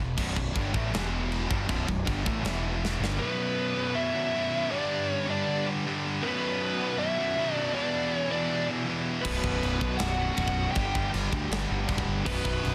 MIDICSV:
0, 0, Header, 1, 9, 480
1, 0, Start_track
1, 0, Key_signature, 2, "minor"
1, 0, Tempo, 377358
1, 224, Time_signature, 4, 2, 24, 8
1, 16215, End_track
2, 0, Start_track
2, 0, Title_t, "Lead electric guitar"
2, 0, Program_c, 0, 29
2, 4059, Note_on_c, 0, 71, 92
2, 5027, Note_on_c, 0, 76, 96
2, 5061, Note_off_c, 0, 71, 0
2, 5989, Note_off_c, 0, 76, 0
2, 5994, Note_on_c, 0, 74, 92
2, 6490, Note_off_c, 0, 74, 0
2, 6490, Note_on_c, 0, 73, 92
2, 6669, Note_off_c, 0, 73, 0
2, 6750, Note_on_c, 0, 74, 84
2, 7186, Note_off_c, 0, 74, 0
2, 7927, Note_on_c, 0, 71, 87
2, 8837, Note_off_c, 0, 71, 0
2, 8885, Note_on_c, 0, 76, 103
2, 9610, Note_off_c, 0, 76, 0
2, 9610, Note_on_c, 0, 74, 103
2, 9852, Note_off_c, 0, 74, 0
2, 9857, Note_on_c, 0, 74, 96
2, 10391, Note_off_c, 0, 74, 0
2, 10391, Note_on_c, 0, 73, 96
2, 10565, Note_off_c, 0, 73, 0
2, 10581, Note_on_c, 0, 74, 91
2, 11020, Note_off_c, 0, 74, 0
2, 11725, Note_on_c, 0, 71, 73
2, 12688, Note_on_c, 0, 78, 93
2, 12731, Note_off_c, 0, 71, 0
2, 13153, Note_off_c, 0, 78, 0
2, 13168, Note_on_c, 0, 78, 98
2, 13620, Note_off_c, 0, 78, 0
2, 13626, Note_on_c, 0, 79, 92
2, 14094, Note_off_c, 0, 79, 0
2, 15598, Note_on_c, 0, 71, 87
2, 16215, Note_off_c, 0, 71, 0
2, 16215, End_track
3, 0, Start_track
3, 0, Title_t, "String section"
3, 0, Program_c, 1, 48
3, 0, Note_on_c, 1, 52, 70
3, 0, Note_on_c, 1, 59, 62
3, 0, Note_on_c, 1, 66, 65
3, 0, Note_on_c, 1, 76, 81
3, 192, Note_off_c, 1, 76, 0
3, 199, Note_off_c, 1, 52, 0
3, 224, Note_on_c, 1, 73, 70
3, 236, Note_on_c, 1, 74, 77
3, 1179, Note_off_c, 1, 73, 0
3, 1181, Note_on_c, 1, 76, 81
3, 1182, Note_on_c, 1, 52, 76
3, 1185, Note_off_c, 1, 74, 0
3, 1871, Note_off_c, 1, 59, 0
3, 1896, Note_on_c, 1, 73, 66
3, 1898, Note_on_c, 1, 74, 76
3, 1901, Note_off_c, 1, 52, 0
3, 1901, Note_off_c, 1, 76, 0
3, 1909, Note_on_c, 1, 59, 76
3, 3096, Note_off_c, 1, 73, 0
3, 3098, Note_off_c, 1, 74, 0
3, 3133, Note_on_c, 1, 52, 73
3, 3135, Note_on_c, 1, 76, 79
3, 3840, Note_off_c, 1, 52, 0
3, 3841, Note_off_c, 1, 76, 0
3, 3843, Note_on_c, 1, 74, 69
3, 3852, Note_on_c, 1, 73, 65
3, 4037, Note_off_c, 1, 66, 0
3, 4056, Note_off_c, 1, 59, 0
3, 4079, Note_off_c, 1, 74, 0
3, 4084, Note_off_c, 1, 73, 0
3, 4093, Note_on_c, 1, 74, 85
3, 4094, Note_on_c, 1, 59, 83
3, 4102, Note_on_c, 1, 66, 70
3, 4108, Note_on_c, 1, 73, 70
3, 5984, Note_on_c, 1, 55, 79
3, 5986, Note_on_c, 1, 62, 73
3, 5992, Note_off_c, 1, 59, 0
3, 5992, Note_off_c, 1, 74, 0
3, 5995, Note_on_c, 1, 71, 88
3, 5996, Note_off_c, 1, 66, 0
3, 5996, Note_on_c, 1, 67, 70
3, 6000, Note_off_c, 1, 73, 0
3, 7898, Note_off_c, 1, 55, 0
3, 7899, Note_off_c, 1, 62, 0
3, 7903, Note_off_c, 1, 71, 0
3, 7904, Note_off_c, 1, 67, 0
3, 7927, Note_on_c, 1, 74, 90
3, 7929, Note_on_c, 1, 59, 80
3, 7935, Note_on_c, 1, 66, 77
3, 7941, Note_on_c, 1, 73, 72
3, 9829, Note_off_c, 1, 74, 0
3, 9833, Note_off_c, 1, 66, 0
3, 9836, Note_off_c, 1, 73, 0
3, 9849, Note_on_c, 1, 66, 72
3, 9854, Note_on_c, 1, 67, 94
3, 9864, Note_on_c, 1, 52, 81
3, 11749, Note_off_c, 1, 67, 0
3, 11754, Note_off_c, 1, 52, 0
3, 11757, Note_on_c, 1, 74, 87
3, 11764, Note_on_c, 1, 73, 71
3, 13628, Note_off_c, 1, 59, 0
3, 13640, Note_off_c, 1, 66, 0
3, 13655, Note_off_c, 1, 74, 0
3, 13658, Note_off_c, 1, 73, 0
3, 13685, Note_on_c, 1, 71, 83
3, 13688, Note_on_c, 1, 55, 85
3, 13694, Note_on_c, 1, 67, 70
3, 13699, Note_on_c, 1, 62, 70
3, 15571, Note_off_c, 1, 71, 0
3, 15572, Note_off_c, 1, 55, 0
3, 15575, Note_off_c, 1, 67, 0
3, 15578, Note_off_c, 1, 62, 0
3, 15604, Note_on_c, 1, 59, 77
3, 15605, Note_on_c, 1, 71, 69
3, 15611, Note_on_c, 1, 66, 72
3, 15615, Note_on_c, 1, 74, 85
3, 16215, Note_off_c, 1, 59, 0
3, 16215, Note_off_c, 1, 66, 0
3, 16215, Note_off_c, 1, 71, 0
3, 16215, Note_off_c, 1, 74, 0
3, 16215, End_track
4, 0, Start_track
4, 0, Title_t, "Lead electric guitar"
4, 0, Program_c, 2, 29
4, 4087, Note_on_c, 2, 59, 75
4, 4995, Note_off_c, 2, 59, 0
4, 5039, Note_on_c, 2, 64, 91
4, 5952, Note_off_c, 2, 64, 0
4, 5996, Note_on_c, 2, 62, 88
4, 6479, Note_off_c, 2, 62, 0
4, 6479, Note_on_c, 2, 61, 88
4, 6671, Note_off_c, 2, 61, 0
4, 6734, Note_on_c, 2, 62, 78
4, 7177, Note_off_c, 2, 62, 0
4, 7913, Note_on_c, 2, 59, 80
4, 8830, Note_off_c, 2, 59, 0
4, 8887, Note_on_c, 2, 64, 95
4, 9561, Note_off_c, 2, 64, 0
4, 9561, Note_on_c, 2, 62, 95
4, 9797, Note_off_c, 2, 62, 0
4, 9851, Note_on_c, 2, 62, 84
4, 10334, Note_off_c, 2, 62, 0
4, 10334, Note_on_c, 2, 61, 84
4, 10519, Note_off_c, 2, 61, 0
4, 10592, Note_on_c, 2, 62, 76
4, 11027, Note_off_c, 2, 62, 0
4, 11759, Note_on_c, 2, 59, 76
4, 12669, Note_off_c, 2, 59, 0
4, 12671, Note_on_c, 2, 66, 83
4, 13140, Note_off_c, 2, 66, 0
4, 13158, Note_on_c, 2, 66, 88
4, 13622, Note_off_c, 2, 66, 0
4, 13655, Note_on_c, 2, 67, 88
4, 14110, Note_off_c, 2, 67, 0
4, 15594, Note_on_c, 2, 59, 80
4, 16215, Note_off_c, 2, 59, 0
4, 16215, End_track
5, 0, Start_track
5, 0, Title_t, "Distorted electric guitar"
5, 0, Program_c, 3, 30
5, 4, Note_on_c, 3, 40, 60
5, 11, Note_on_c, 3, 47, 77
5, 186, Note_off_c, 3, 40, 0
5, 190, Note_off_c, 3, 47, 0
5, 246, Note_on_c, 3, 35, 92
5, 246, Note_on_c, 3, 42, 108
5, 250, Note_on_c, 3, 47, 110
5, 452, Note_off_c, 3, 35, 0
5, 455, Note_off_c, 3, 42, 0
5, 467, Note_on_c, 3, 35, 71
5, 470, Note_on_c, 3, 42, 76
5, 471, Note_off_c, 3, 47, 0
5, 659, Note_off_c, 3, 35, 0
5, 660, Note_off_c, 3, 42, 0
5, 707, Note_on_c, 3, 43, 89
5, 708, Note_on_c, 3, 50, 95
5, 719, Note_on_c, 3, 55, 109
5, 940, Note_off_c, 3, 43, 0
5, 941, Note_off_c, 3, 50, 0
5, 946, Note_off_c, 3, 55, 0
5, 947, Note_on_c, 3, 45, 99
5, 951, Note_on_c, 3, 52, 109
5, 961, Note_on_c, 3, 57, 111
5, 1168, Note_off_c, 3, 45, 0
5, 1171, Note_off_c, 3, 52, 0
5, 1173, Note_on_c, 3, 40, 99
5, 1181, Note_off_c, 3, 57, 0
5, 1186, Note_on_c, 3, 52, 108
5, 1188, Note_on_c, 3, 47, 105
5, 1895, Note_off_c, 3, 40, 0
5, 1900, Note_on_c, 3, 43, 89
5, 1903, Note_off_c, 3, 52, 0
5, 1904, Note_off_c, 3, 47, 0
5, 1911, Note_on_c, 3, 55, 89
5, 1912, Note_on_c, 3, 50, 99
5, 2136, Note_off_c, 3, 43, 0
5, 2139, Note_off_c, 3, 50, 0
5, 2141, Note_on_c, 3, 35, 97
5, 2144, Note_on_c, 3, 42, 98
5, 2145, Note_off_c, 3, 55, 0
5, 2155, Note_on_c, 3, 47, 112
5, 2376, Note_off_c, 3, 35, 0
5, 2379, Note_off_c, 3, 42, 0
5, 2387, Note_off_c, 3, 47, 0
5, 2392, Note_on_c, 3, 35, 64
5, 2394, Note_on_c, 3, 42, 71
5, 2585, Note_off_c, 3, 35, 0
5, 2586, Note_off_c, 3, 42, 0
5, 2618, Note_on_c, 3, 43, 86
5, 2629, Note_on_c, 3, 55, 102
5, 2635, Note_on_c, 3, 50, 108
5, 2846, Note_off_c, 3, 43, 0
5, 2851, Note_on_c, 3, 45, 96
5, 2861, Note_off_c, 3, 50, 0
5, 2863, Note_off_c, 3, 55, 0
5, 2866, Note_on_c, 3, 52, 104
5, 2868, Note_on_c, 3, 57, 106
5, 3106, Note_off_c, 3, 45, 0
5, 3106, Note_on_c, 3, 40, 106
5, 3108, Note_off_c, 3, 52, 0
5, 3108, Note_on_c, 3, 47, 114
5, 3115, Note_off_c, 3, 57, 0
5, 3115, Note_on_c, 3, 52, 113
5, 3819, Note_off_c, 3, 40, 0
5, 3824, Note_on_c, 3, 43, 86
5, 3827, Note_off_c, 3, 47, 0
5, 3830, Note_off_c, 3, 52, 0
5, 3835, Note_on_c, 3, 55, 93
5, 3842, Note_on_c, 3, 50, 92
5, 4050, Note_off_c, 3, 43, 0
5, 4055, Note_on_c, 3, 35, 94
5, 4070, Note_off_c, 3, 50, 0
5, 4070, Note_off_c, 3, 55, 0
5, 4075, Note_on_c, 3, 42, 97
5, 4091, Note_on_c, 3, 47, 106
5, 5251, Note_off_c, 3, 47, 0
5, 5256, Note_off_c, 3, 35, 0
5, 5266, Note_off_c, 3, 42, 0
5, 5266, Note_on_c, 3, 47, 87
5, 5289, Note_on_c, 3, 42, 78
5, 5295, Note_on_c, 3, 35, 71
5, 5500, Note_off_c, 3, 47, 0
5, 5503, Note_off_c, 3, 35, 0
5, 5512, Note_off_c, 3, 42, 0
5, 5518, Note_on_c, 3, 35, 76
5, 5535, Note_on_c, 3, 42, 83
5, 5541, Note_on_c, 3, 47, 82
5, 5978, Note_off_c, 3, 35, 0
5, 5983, Note_on_c, 3, 43, 97
5, 5989, Note_off_c, 3, 42, 0
5, 5994, Note_on_c, 3, 50, 94
5, 5999, Note_off_c, 3, 47, 0
5, 6011, Note_on_c, 3, 55, 101
5, 7181, Note_off_c, 3, 43, 0
5, 7186, Note_off_c, 3, 55, 0
5, 7187, Note_off_c, 3, 50, 0
5, 7201, Note_on_c, 3, 55, 90
5, 7217, Note_on_c, 3, 50, 84
5, 7231, Note_on_c, 3, 43, 71
5, 7430, Note_off_c, 3, 55, 0
5, 7436, Note_off_c, 3, 43, 0
5, 7438, Note_off_c, 3, 50, 0
5, 7451, Note_on_c, 3, 43, 85
5, 7459, Note_on_c, 3, 50, 85
5, 7478, Note_on_c, 3, 55, 84
5, 7915, Note_off_c, 3, 43, 0
5, 7919, Note_off_c, 3, 50, 0
5, 7928, Note_off_c, 3, 55, 0
5, 7936, Note_on_c, 3, 35, 99
5, 7941, Note_on_c, 3, 42, 107
5, 7957, Note_on_c, 3, 47, 101
5, 9113, Note_off_c, 3, 47, 0
5, 9118, Note_off_c, 3, 35, 0
5, 9121, Note_off_c, 3, 42, 0
5, 9129, Note_on_c, 3, 47, 94
5, 9146, Note_on_c, 3, 42, 81
5, 9166, Note_on_c, 3, 35, 68
5, 9345, Note_off_c, 3, 35, 0
5, 9354, Note_off_c, 3, 47, 0
5, 9356, Note_off_c, 3, 42, 0
5, 9361, Note_on_c, 3, 35, 78
5, 9371, Note_on_c, 3, 42, 87
5, 9389, Note_on_c, 3, 47, 97
5, 9830, Note_off_c, 3, 35, 0
5, 9835, Note_off_c, 3, 42, 0
5, 9844, Note_off_c, 3, 47, 0
5, 9844, Note_on_c, 3, 40, 91
5, 9861, Note_on_c, 3, 47, 95
5, 9873, Note_on_c, 3, 52, 100
5, 11021, Note_off_c, 3, 52, 0
5, 11031, Note_off_c, 3, 40, 0
5, 11036, Note_on_c, 3, 52, 86
5, 11039, Note_off_c, 3, 47, 0
5, 11054, Note_on_c, 3, 47, 78
5, 11066, Note_on_c, 3, 40, 73
5, 11267, Note_off_c, 3, 52, 0
5, 11273, Note_off_c, 3, 40, 0
5, 11276, Note_off_c, 3, 47, 0
5, 11288, Note_on_c, 3, 40, 71
5, 11301, Note_on_c, 3, 47, 79
5, 11316, Note_on_c, 3, 52, 80
5, 11745, Note_off_c, 3, 40, 0
5, 11750, Note_on_c, 3, 35, 95
5, 11759, Note_off_c, 3, 47, 0
5, 11766, Note_off_c, 3, 52, 0
5, 11773, Note_on_c, 3, 42, 95
5, 11785, Note_on_c, 3, 47, 104
5, 12939, Note_off_c, 3, 35, 0
5, 12951, Note_off_c, 3, 42, 0
5, 12953, Note_off_c, 3, 47, 0
5, 12968, Note_on_c, 3, 47, 81
5, 12978, Note_on_c, 3, 42, 74
5, 12993, Note_on_c, 3, 35, 74
5, 13176, Note_off_c, 3, 35, 0
5, 13190, Note_off_c, 3, 47, 0
5, 13191, Note_on_c, 3, 35, 76
5, 13195, Note_off_c, 3, 42, 0
5, 13215, Note_on_c, 3, 42, 91
5, 13224, Note_on_c, 3, 47, 83
5, 13659, Note_off_c, 3, 35, 0
5, 13671, Note_off_c, 3, 42, 0
5, 13676, Note_off_c, 3, 47, 0
5, 13682, Note_on_c, 3, 43, 91
5, 13692, Note_on_c, 3, 50, 103
5, 13711, Note_on_c, 3, 55, 106
5, 14857, Note_off_c, 3, 55, 0
5, 14859, Note_off_c, 3, 43, 0
5, 14864, Note_off_c, 3, 50, 0
5, 14872, Note_on_c, 3, 55, 88
5, 14896, Note_on_c, 3, 50, 77
5, 14907, Note_on_c, 3, 43, 74
5, 15086, Note_off_c, 3, 43, 0
5, 15096, Note_off_c, 3, 55, 0
5, 15101, Note_on_c, 3, 43, 73
5, 15108, Note_off_c, 3, 50, 0
5, 15127, Note_on_c, 3, 50, 78
5, 15138, Note_on_c, 3, 55, 84
5, 15568, Note_off_c, 3, 43, 0
5, 15575, Note_on_c, 3, 35, 89
5, 15581, Note_off_c, 3, 50, 0
5, 15586, Note_off_c, 3, 55, 0
5, 15598, Note_on_c, 3, 42, 102
5, 15604, Note_on_c, 3, 47, 117
5, 16215, Note_off_c, 3, 35, 0
5, 16215, Note_off_c, 3, 42, 0
5, 16215, Note_off_c, 3, 47, 0
5, 16215, End_track
6, 0, Start_track
6, 0, Title_t, "Distorted electric guitar"
6, 0, Program_c, 4, 30
6, 4769, Note_on_c, 4, 47, 83
6, 4792, Note_on_c, 4, 42, 87
6, 4807, Note_on_c, 4, 35, 68
6, 5493, Note_off_c, 4, 35, 0
6, 5493, Note_off_c, 4, 47, 0
6, 5504, Note_off_c, 4, 42, 0
6, 6701, Note_on_c, 4, 55, 93
6, 6724, Note_on_c, 4, 50, 83
6, 6736, Note_on_c, 4, 43, 76
6, 7420, Note_off_c, 4, 55, 0
6, 7432, Note_off_c, 4, 50, 0
6, 7435, Note_off_c, 4, 43, 0
6, 8632, Note_on_c, 4, 47, 99
6, 8658, Note_on_c, 4, 42, 71
6, 8674, Note_on_c, 4, 35, 73
6, 9335, Note_off_c, 4, 35, 0
6, 9346, Note_off_c, 4, 47, 0
6, 9359, Note_off_c, 4, 42, 0
6, 10543, Note_on_c, 4, 52, 83
6, 10562, Note_on_c, 4, 47, 77
6, 10578, Note_on_c, 4, 40, 76
6, 11237, Note_off_c, 4, 40, 0
6, 11260, Note_off_c, 4, 52, 0
6, 11262, Note_off_c, 4, 47, 0
6, 12474, Note_on_c, 4, 47, 89
6, 12494, Note_on_c, 4, 42, 84
6, 12505, Note_on_c, 4, 35, 68
6, 13181, Note_off_c, 4, 47, 0
6, 13188, Note_off_c, 4, 35, 0
6, 13192, Note_off_c, 4, 42, 0
6, 14378, Note_on_c, 4, 55, 89
6, 14401, Note_on_c, 4, 50, 83
6, 14424, Note_on_c, 4, 43, 82
6, 15087, Note_off_c, 4, 55, 0
6, 15093, Note_off_c, 4, 43, 0
6, 15099, Note_off_c, 4, 50, 0
6, 16215, End_track
7, 0, Start_track
7, 0, Title_t, "Distorted electric guitar"
7, 0, Program_c, 5, 30
7, 5026, Note_on_c, 5, 35, 71
7, 5033, Note_on_c, 5, 42, 88
7, 5052, Note_on_c, 5, 47, 78
7, 5979, Note_off_c, 5, 35, 0
7, 5985, Note_off_c, 5, 42, 0
7, 5995, Note_off_c, 5, 47, 0
7, 6958, Note_on_c, 5, 43, 77
7, 6972, Note_on_c, 5, 50, 78
7, 6991, Note_on_c, 5, 55, 85
7, 7905, Note_off_c, 5, 43, 0
7, 7916, Note_off_c, 5, 50, 0
7, 7925, Note_off_c, 5, 55, 0
7, 8874, Note_on_c, 5, 35, 77
7, 8889, Note_on_c, 5, 42, 81
7, 8904, Note_on_c, 5, 47, 82
7, 9827, Note_off_c, 5, 35, 0
7, 9834, Note_off_c, 5, 42, 0
7, 9842, Note_off_c, 5, 47, 0
7, 10795, Note_on_c, 5, 40, 76
7, 10809, Note_on_c, 5, 47, 74
7, 10823, Note_on_c, 5, 52, 82
7, 11743, Note_off_c, 5, 40, 0
7, 11752, Note_off_c, 5, 47, 0
7, 11759, Note_off_c, 5, 52, 0
7, 12709, Note_on_c, 5, 35, 72
7, 12731, Note_on_c, 5, 42, 67
7, 12737, Note_on_c, 5, 47, 79
7, 13657, Note_off_c, 5, 35, 0
7, 13668, Note_off_c, 5, 42, 0
7, 13671, Note_off_c, 5, 47, 0
7, 14640, Note_on_c, 5, 43, 74
7, 14649, Note_on_c, 5, 50, 87
7, 14660, Note_on_c, 5, 55, 86
7, 15576, Note_off_c, 5, 43, 0
7, 15580, Note_off_c, 5, 50, 0
7, 15586, Note_off_c, 5, 55, 0
7, 16215, End_track
8, 0, Start_track
8, 0, Title_t, "Picked electric bass"
8, 0, Program_c, 6, 34
8, 0, Note_on_c, 6, 28, 88
8, 206, Note_off_c, 6, 28, 0
8, 232, Note_on_c, 6, 23, 100
8, 453, Note_off_c, 6, 23, 0
8, 461, Note_on_c, 6, 23, 77
8, 687, Note_off_c, 6, 23, 0
8, 707, Note_on_c, 6, 31, 97
8, 931, Note_off_c, 6, 31, 0
8, 952, Note_on_c, 6, 33, 101
8, 1174, Note_off_c, 6, 33, 0
8, 1186, Note_on_c, 6, 28, 94
8, 1860, Note_off_c, 6, 28, 0
8, 1912, Note_on_c, 6, 31, 105
8, 2136, Note_off_c, 6, 31, 0
8, 2150, Note_on_c, 6, 23, 107
8, 2375, Note_off_c, 6, 23, 0
8, 2397, Note_on_c, 6, 23, 75
8, 2620, Note_off_c, 6, 23, 0
8, 2644, Note_on_c, 6, 31, 98
8, 2863, Note_off_c, 6, 31, 0
8, 2881, Note_on_c, 6, 33, 96
8, 3090, Note_off_c, 6, 33, 0
8, 3098, Note_on_c, 6, 28, 95
8, 3779, Note_off_c, 6, 28, 0
8, 3814, Note_on_c, 6, 31, 92
8, 4049, Note_off_c, 6, 31, 0
8, 11764, Note_on_c, 6, 23, 102
8, 11950, Note_off_c, 6, 23, 0
8, 12008, Note_on_c, 6, 23, 96
8, 12193, Note_off_c, 6, 23, 0
8, 12249, Note_on_c, 6, 23, 90
8, 12433, Note_off_c, 6, 23, 0
8, 12477, Note_on_c, 6, 35, 94
8, 12665, Note_off_c, 6, 35, 0
8, 12724, Note_on_c, 6, 23, 90
8, 13094, Note_off_c, 6, 23, 0
8, 13200, Note_on_c, 6, 23, 102
8, 13570, Note_off_c, 6, 23, 0
8, 13687, Note_on_c, 6, 31, 109
8, 13868, Note_off_c, 6, 31, 0
8, 13928, Note_on_c, 6, 31, 90
8, 14109, Note_off_c, 6, 31, 0
8, 14168, Note_on_c, 6, 31, 98
8, 14348, Note_off_c, 6, 31, 0
8, 14398, Note_on_c, 6, 38, 100
8, 14581, Note_off_c, 6, 38, 0
8, 14632, Note_on_c, 6, 31, 88
8, 14817, Note_off_c, 6, 31, 0
8, 14890, Note_on_c, 6, 31, 93
8, 15067, Note_off_c, 6, 31, 0
8, 15118, Note_on_c, 6, 26, 99
8, 15299, Note_off_c, 6, 26, 0
8, 15359, Note_on_c, 6, 31, 98
8, 15539, Note_off_c, 6, 31, 0
8, 15834, Note_on_c, 6, 23, 92
8, 16015, Note_off_c, 6, 23, 0
8, 16093, Note_on_c, 6, 23, 96
8, 16215, Note_off_c, 6, 23, 0
8, 16215, End_track
9, 0, Start_track
9, 0, Title_t, "Drums"
9, 225, Note_on_c, 9, 36, 105
9, 231, Note_on_c, 9, 49, 104
9, 231, Note_on_c, 9, 52, 63
9, 352, Note_off_c, 9, 36, 0
9, 358, Note_off_c, 9, 49, 0
9, 358, Note_off_c, 9, 52, 0
9, 463, Note_on_c, 9, 36, 93
9, 591, Note_off_c, 9, 36, 0
9, 707, Note_on_c, 9, 36, 114
9, 716, Note_on_c, 9, 52, 64
9, 835, Note_off_c, 9, 36, 0
9, 843, Note_off_c, 9, 52, 0
9, 945, Note_on_c, 9, 36, 117
9, 1072, Note_off_c, 9, 36, 0
9, 1190, Note_on_c, 9, 52, 64
9, 1206, Note_on_c, 9, 38, 109
9, 1318, Note_off_c, 9, 52, 0
9, 1333, Note_off_c, 9, 38, 0
9, 1676, Note_on_c, 9, 52, 66
9, 1803, Note_off_c, 9, 52, 0
9, 1916, Note_on_c, 9, 36, 103
9, 2043, Note_off_c, 9, 36, 0
9, 2147, Note_on_c, 9, 52, 68
9, 2152, Note_on_c, 9, 36, 112
9, 2274, Note_off_c, 9, 52, 0
9, 2279, Note_off_c, 9, 36, 0
9, 2397, Note_on_c, 9, 36, 85
9, 2524, Note_off_c, 9, 36, 0
9, 2636, Note_on_c, 9, 36, 116
9, 2641, Note_on_c, 9, 52, 69
9, 2764, Note_off_c, 9, 36, 0
9, 2768, Note_off_c, 9, 52, 0
9, 2878, Note_on_c, 9, 36, 112
9, 3005, Note_off_c, 9, 36, 0
9, 3112, Note_on_c, 9, 52, 66
9, 3127, Note_on_c, 9, 38, 104
9, 3239, Note_off_c, 9, 52, 0
9, 3254, Note_off_c, 9, 38, 0
9, 3623, Note_on_c, 9, 38, 74
9, 3750, Note_off_c, 9, 38, 0
9, 3863, Note_on_c, 9, 38, 94
9, 3990, Note_off_c, 9, 38, 0
9, 11764, Note_on_c, 9, 36, 119
9, 11764, Note_on_c, 9, 49, 113
9, 11764, Note_on_c, 9, 52, 64
9, 11891, Note_off_c, 9, 49, 0
9, 11891, Note_off_c, 9, 52, 0
9, 11892, Note_off_c, 9, 36, 0
9, 12004, Note_on_c, 9, 36, 84
9, 12131, Note_off_c, 9, 36, 0
9, 12251, Note_on_c, 9, 52, 63
9, 12378, Note_off_c, 9, 52, 0
9, 12481, Note_on_c, 9, 36, 89
9, 12608, Note_off_c, 9, 36, 0
9, 12704, Note_on_c, 9, 52, 61
9, 12719, Note_on_c, 9, 38, 116
9, 12831, Note_off_c, 9, 52, 0
9, 12847, Note_off_c, 9, 38, 0
9, 13189, Note_on_c, 9, 52, 66
9, 13201, Note_on_c, 9, 36, 98
9, 13316, Note_off_c, 9, 52, 0
9, 13326, Note_off_c, 9, 36, 0
9, 13326, Note_on_c, 9, 36, 87
9, 13453, Note_off_c, 9, 36, 0
9, 13676, Note_on_c, 9, 52, 67
9, 13686, Note_on_c, 9, 36, 109
9, 13804, Note_off_c, 9, 52, 0
9, 13814, Note_off_c, 9, 36, 0
9, 13930, Note_on_c, 9, 36, 92
9, 14057, Note_off_c, 9, 36, 0
9, 14167, Note_on_c, 9, 52, 72
9, 14295, Note_off_c, 9, 52, 0
9, 14406, Note_on_c, 9, 36, 92
9, 14534, Note_off_c, 9, 36, 0
9, 14647, Note_on_c, 9, 52, 69
9, 14662, Note_on_c, 9, 38, 121
9, 14774, Note_off_c, 9, 52, 0
9, 14790, Note_off_c, 9, 38, 0
9, 15121, Note_on_c, 9, 36, 93
9, 15121, Note_on_c, 9, 52, 72
9, 15240, Note_off_c, 9, 36, 0
9, 15240, Note_on_c, 9, 36, 90
9, 15248, Note_off_c, 9, 52, 0
9, 15368, Note_off_c, 9, 36, 0
9, 15597, Note_on_c, 9, 52, 65
9, 15597, Note_on_c, 9, 57, 108
9, 15599, Note_on_c, 9, 36, 119
9, 15724, Note_off_c, 9, 52, 0
9, 15724, Note_off_c, 9, 57, 0
9, 15726, Note_off_c, 9, 36, 0
9, 15837, Note_on_c, 9, 36, 93
9, 15964, Note_off_c, 9, 36, 0
9, 16086, Note_on_c, 9, 52, 67
9, 16213, Note_off_c, 9, 52, 0
9, 16215, End_track
0, 0, End_of_file